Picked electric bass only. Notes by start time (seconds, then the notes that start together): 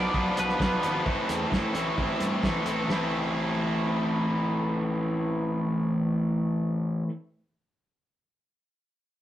0.14 B1
0.38 B1
0.60 B1
0.84 G#1
1.06 A1
1.29 E2
1.52 A1
1.75 A1
1.98 A1
2.20 G2
2.43 A1
2.66 A1
2.88 A1